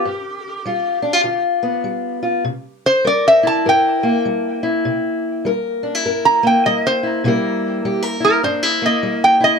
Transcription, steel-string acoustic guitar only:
0.05 G2
0.65 G3 F4
1.02 D4
1.13 F4
1.24 D3 F4
1.63 B3
1.84 G3
2.23 F4
2.45 C3
3.05 G3 A#4
3.43 E4
3.65 G2 A#4
4.03 A#3
4.25 G3
4.63 E4
4.85 C3
5.45 G3 A#4
5.83 D4
5.95 E4
6.05 G2 A#4
6.43 A#3
6.66 G3
7.03 E4
7.24 C3 G3 A#3 E4 A#4
7.85 G3 G4
8.03 A#4
8.20 E4
8.43 G2 D4
8.63 E4
8.82 A#3
9.03 G3
9.40 E4

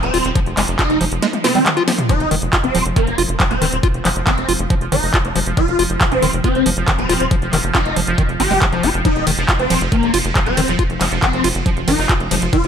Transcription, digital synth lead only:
0.03 C4
0.79 D#4
1.44 C4
2.09 D#4
2.64 C4
2.96 A#3
3.51 C4
4.27 C4
4.92 D#4
5.57 F4
6.12 C4
6.44 C4
6.99 C4
7.75 D#4
8.40 G4
9.05 D#4
9.59 C4
9.92 A#3
10.46 C4
11.22 C4
11.88 D#4
12.53 F4

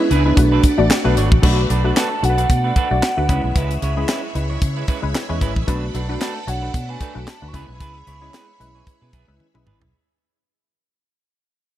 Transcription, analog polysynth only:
0.00 G#3 B3 C#4 E4 B4
0.25 G#3 B3 C#4 E4 B4
0.37 A3 B3 D4 F#4 B4
0.78 A3 B3 D4 F#4 D5
1.04 A3 B3 D4 F#4 B4
1.42 A3 D4 F#4 B4
1.84 A3 D4 F#4 B4
2.22 A3 D4 F#4 A4
2.30 B4
2.90 A3 D4 F#4 D5
3.17 A3 D4 F#4 B4
3.29 G#3 C#4 E4 B4
3.97 G#3 C#4 E4 G#4
4.35 G#3 C#4 E4 B4
5.02 G#3 C#4 E4 B4
5.29 G#3 C#4 E4 B4
5.67 A3 D4 F#4 B4
6.09 A3 D4 F#4 B4
6.47 A3 D4 F#4 C#5
7.15 A3 D4 F#4 B4
7.41 A3 D4 F#4 B4
7.53 G#3 C#4 E4 B4
8.21 G#3 C#4 E4 C#5
8.60 G#3 C#4 E4 B4
9.28 G#3 C#4 E4 B4
9.54 G#3 C#4 E4 B4

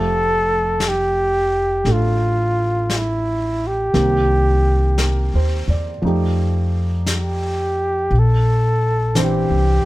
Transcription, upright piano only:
Already playing: F3 A3 G4 E5
1.84 A3 D4 A4
3.93 D#3 A#3 C4 G4
4.99 A#4
5.35 C5
5.70 D5
6.02 F3 A3 D#4
6.06 G4
9.15 E3 C4 D4 C5

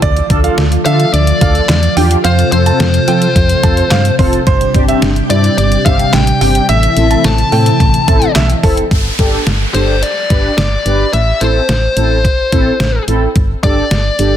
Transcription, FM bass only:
0.02 D2
0.30 D2
0.58 D2
0.86 D3
1.13 D2
1.41 D2
1.69 E2
1.97 E2
2.24 F2
2.52 F2
2.80 F2
3.08 F3
3.36 F2
3.64 F2
3.91 G2
4.19 F1
4.47 G1
4.75 G1
5.02 G1
5.30 G2
5.58 G1
5.86 G1
6.13 A1
6.41 G1
6.69 A1
6.97 A1
7.25 A1
7.52 A2
7.80 A1
8.08 A1
8.36 B1
8.63 F1
8.91 G1
9.19 G1
9.47 G1
9.74 G1
10.30 G1
10.58 G1
10.86 G1
11.13 A1
11.41 A1
11.69 A1
11.97 A1
12.53 A1
12.80 A1
13.08 A1
13.36 G1
13.63 G1
13.91 G1
14.19 G1

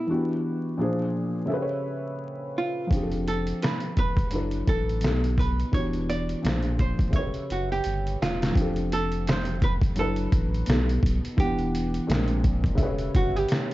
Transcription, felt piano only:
Already playing: A4 D#5
0.07 E3 B3 D4 F#4
0.12 G4
0.77 A#2 F3 D4 G#4
0.82 C5
1.46 C#3 E5
1.50 G4 A4 B4
1.56 C5
1.62 C#5
2.87 F3 C4
2.92 D4 G4
2.97 G#4
3.03 A4
4.30 F#3 D4 E4 A4
4.35 B4
5.01 B2 B3 D#4 G4
5.06 A4
5.72 E3 B3 D4 F#4
5.76 G4
6.42 A#2 F3 D4 G#4
6.47 C5
7.10 C#3 E5
7.14 G4 A4 B4
7.20 C#5
8.52 F3 C4
8.57 D4 G4
8.62 A4
9.95 F#3 D4 E4 A4
10.00 B4
10.66 B2 B3 D#4 G4
10.71 A4
11.37 E3 B3 D4 F#5
11.42 G4
12.07 A#2 G#3 C4 D4
12.12 A#4
12.75 C#3 A4 E5
12.81 G4 B4 C#5

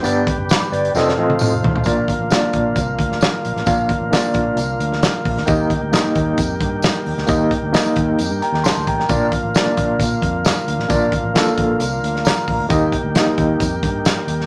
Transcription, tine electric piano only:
0.02 B3 D4 G4 D5
0.51 B5 D6
0.72 B4 D5
0.95 C4 F4 A4 D#5
1.18 C4 F4 A4 D#5
1.85 A#3 D4 F4 D5
2.30 A#3 D4 F4 D5
3.66 A#3 D4 F4 F5
4.11 A#3 D4 F4 D5
5.47 A#3 D#4 G4 D#5
5.92 A#3 D#4 G4 D#5
7.27 A#3 D#4 G4 D#5
7.73 A#3 D#4 G4 D#5
8.42 G5 A#5
8.64 A5 C6
8.88 G5 A#5
9.09 A#3 D4 F4 D5
9.55 A#3 D4 F4 D5
10.88 A#3 D4 F4 D5
11.34 A#3 D4 F4 A4
12.25 A#5
12.69 A#3 D#4 G4 D#5
13.15 A#3 D#4 G4 D#5

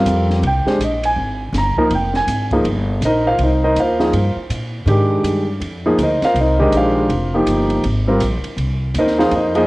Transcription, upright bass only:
0.05 F2
0.42 C2
0.65 muted upright bass stroke
0.79 A#1
1.16 G#1
1.53 G1
1.77 muted upright bass stroke
1.90 F1
2.27 G#1
2.64 G1
3.01 A#1
3.39 C2
3.75 D#2
4.13 G2
4.36 muted upright bass stroke
4.50 A#2
4.86 G#2
5.23 G2
5.60 F2
5.98 D2
6.21 muted upright bass stroke
6.34 C2
6.72 A#1
7.09 F1
7.46 G1
7.84 G#1
8.21 A#1
8.44 muted upright bass stroke
8.57 C2
8.94 D#2
9.31 F2

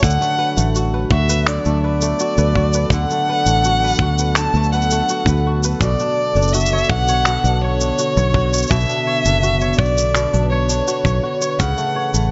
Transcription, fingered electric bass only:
0.03 D2
0.57 A1
1.11 D2
1.66 D2
2.38 D2
2.90 D2
3.46 A1
3.99 D2
4.54 D2
5.26 D2
5.81 B1
6.35 F#1
6.90 B1
7.44 B1
8.17 B1
8.71 B1
9.25 F#1
9.78 B1
10.34 B1
11.05 B1
11.60 C#2
12.14 A1

